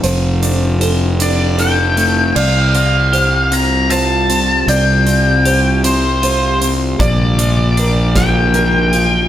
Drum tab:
CC |------|x-----|------|------|
HH |xxxxxx|-xxxxx|xxxxxx|xxxxxx|
SD |------|------|------|---o--|
BD |------|------|------|o--o--|